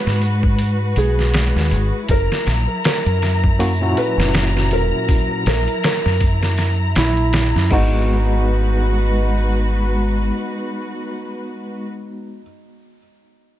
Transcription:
0.00 2.05 G#3 medium
0.00 2.05 F#4 medium
0.00 0.19 B4 medium
0.00 2.05 B4 medium
0.06 0.94 G#2 medium
0.06 snare soft
0.21 open hi-hat medium
0.43 kick medium
0.59 open hi-hat medium
0.96 1.52 B1 loud
0.96 1.97 G#4 medium
0.96 open hi-hat medium
1.19 snare soft
1.34 snare loud
1.34 open hi-hat medium
1.55 1.73 D#2 medium
1.55 snare soft
1.71 1.90 G#1 medium
1.71 open hi-hat medium
2.09 2.28 F#1 loud
2.09 7.68 F#3 medium
2.09 7.68 E4 medium
2.09 2.44 A#4 loud
2.09 7.68 A#5 medium
2.09 kick loud
2.09 open hi-hat medium
2.32 snare medium
2.47 2.66 A#1 loud
2.47 snare soft
2.47 open hi-hat medium
2.84 3.38 A#4 medium
2.84 snare loud
2.84 open hi-hat medium
3.06 3.93 F#2 medium
3.06 closed hi-hat soft
3.22 snare soft
3.22 open hi-hat medium
3.44 kick medium
3.59 3.71 A#3 medium
3.59 3.71 C#4 medium
3.59 3.72 E4 medium
3.59 3.72 F#4 medium
3.59 open hi-hat medium
3.81 5.42 A#2 medium
3.81 5.43 C#4 medium
3.81 5.43 E4 medium
3.81 5.44 F#4 medium
3.97 4.31 B4 medium
3.97 open hi-hat medium
4.17 4.72 F#1 loud
4.17 snare medium
4.34 snare loud
4.34 open hi-hat medium
4.57 snare soft
4.71 4.91 E1 medium
4.71 5.41 A#4 medium
4.71 open hi-hat medium
5.09 kick loud
5.09 open hi-hat medium
5.46 5.65 A#1 loud
5.46 5.81 A#4 medium
5.46 snare medium
5.46 open hi-hat medium
5.68 closed hi-hat soft
5.84 6.19 A#4 medium
5.84 snare loud
5.84 open hi-hat medium
6.05 6.93 F#2 medium
6.05 snare soft
6.20 kick medium
6.20 open hi-hat medium
6.43 snare soft
6.58 snare soft
6.58 open hi-hat medium
6.95 7.51 A#1 loud
6.95 7.72 E4 loud
6.95 snare loud
6.95 open hi-hat medium
7.17 closed hi-hat soft
7.33 snare loud
7.33 open hi-hat medium
7.55 7.69 F#2 loud
7.55 snare soft
7.70 10.30 G#1 medium
7.70 11.84 G#3 medium
7.70 12.39 G#3 medium
7.70 12.40 B3 medium
7.70 12.40 D#4 medium
7.70 12.41 D#4 medium
7.70 11.84 F#4 medium
7.70 12.41 F#4 loud
7.70 11.84 B4 medium
7.70 kick loud
7.70 crash medium

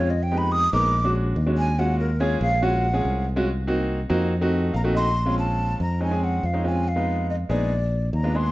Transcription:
0.00 0.67 F2 medium
0.00 0.10 C4 medium
0.00 0.10 C#4 medium
0.00 0.10 F4 medium
0.00 0.12 C#5 medium
0.10 0.24 D#5 medium
0.23 0.39 G5 medium
0.31 0.61 G#3 medium
0.31 0.61 B3 medium
0.31 0.61 D#4 medium
0.31 0.61 G4 medium
0.38 0.53 B5 loud
0.52 0.73 D#6 loud
0.73 1.32 A#1 loud
0.73 0.94 G#3 medium
0.73 0.94 B3 medium
0.73 0.94 D#4 medium
0.73 0.94 A#4 medium
0.73 1.13 D6 loud
1.04 1.34 G#3 medium
1.04 1.34 C#4 medium
1.04 1.34 D4 medium
1.04 1.34 F#4 medium
1.36 2.36 D#2 medium
1.46 1.69 G#3 medium
1.46 1.69 C#4 medium
1.46 1.69 D4 medium
1.46 1.69 F#4 medium
1.58 1.81 G#5 loud
1.79 2.08 G#3 medium
1.79 2.08 C#4 medium
1.79 2.08 F4 medium
1.79 2.08 F#4 medium
1.79 1.99 F#5 medium
1.99 2.22 A#4 medium
2.20 2.50 G#3 medium
2.20 2.50 C#4 medium
2.20 2.50 F4 medium
2.20 2.50 G#4 loud
2.20 2.42 C#5 loud
2.41 3.01 A#1 loud
2.41 2.65 F5 loud
2.62 2.85 G#3 medium
2.62 2.85 C#4 medium
2.62 2.85 F4 medium
2.62 2.85 F#4 loud
2.62 3.27 F#5 loud
2.93 3.23 G#3 medium
2.93 3.24 C#4 medium
2.93 3.24 F4 medium
2.93 3.24 G#4 medium
3.05 4.05 C2 medium
3.36 3.47 G#3 medium
3.36 3.47 C#4 medium
3.36 3.47 F4 medium
3.36 3.47 F#4 loud
3.67 3.97 A#3 medium
3.67 3.98 C4 medium
3.67 3.98 D#4 medium
3.67 3.98 F#4 loud
4.09 4.70 F2 loud
4.09 4.31 A#3 medium
4.09 4.31 C4 medium
4.09 4.31 D#4 medium
4.09 4.31 F#4 loud
4.41 4.71 A3 medium
4.41 4.72 C4 medium
4.41 4.72 D#4 medium
4.41 4.72 F#4 loud
4.73 5.74 A#1 loud
4.73 4.93 F5 medium
4.73 4.82 A#5 medium
4.84 5.07 A3 medium
4.84 5.07 C4 medium
4.84 5.07 D#4 medium
4.84 5.07 F#4 loud
4.95 5.15 D#5 medium
4.95 5.35 C6 loud
5.26 5.78 G#3 medium
5.26 5.78 C4 medium
5.26 5.79 C#4 medium
5.26 5.79 F4 medium
5.39 5.78 A5 medium
5.80 6.40 F2 medium
5.80 6.01 A#5 medium
6.00 6.08 G#3 medium
6.00 6.08 C4 medium
6.00 6.08 C#4 medium
6.00 6.08 D#4 medium
6.00 6.25 G#5 medium
6.11 6.41 G#3 medium
6.11 6.41 C4 medium
6.11 6.41 C#4 medium
6.11 6.41 G#4 medium
6.24 6.47 F#5 medium
6.43 7.43 F2 medium
6.43 6.66 F5 medium
6.53 6.61 G#3 medium
6.53 6.62 C4 medium
6.53 6.61 C#4 medium
6.53 6.62 D#4 medium
6.64 6.86 G#3 medium
6.64 6.86 C4 medium
6.64 6.86 C#4 medium
6.64 6.86 F4 medium
6.64 6.90 G#5 medium
6.88 7.29 F5 medium
6.96 7.33 G#3 medium
6.96 7.33 B3 medium
6.96 7.33 D#4 medium
6.96 7.34 F4 medium
7.30 7.36 D#5 medium
7.49 8.09 A#1 loud
7.49 7.71 G#3 medium
7.49 7.71 B3 medium
7.49 7.71 D#4 medium
7.49 7.71 G#4 medium
7.49 8.10 D5 medium
8.13 8.52 D#2 medium
8.13 8.38 A#5 medium
8.24 8.31 G#3 medium
8.24 8.31 B3 medium
8.24 8.32 D4 medium
8.24 8.32 F4 medium
8.35 8.52 G#3 medium
8.35 8.52 B3 medium
8.35 8.52 D4 medium
8.35 8.52 G#4 medium
8.35 8.52 C6 loud

